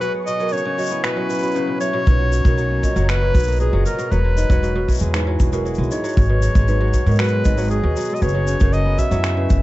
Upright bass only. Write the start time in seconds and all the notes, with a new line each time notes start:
2.07 B1
2.45 B1
2.96 F#1
3.35 B1
3.73 F#1
4.12 E1
4.50 E1
5.01 E2
5.40 E1
5.78 B1
6.17 G#1
6.55 G#1
7.06 G#2
7.45 G#1
7.83 D#2
8.22 F#1
8.61 F#1
9.11 F#2
9.50 F#1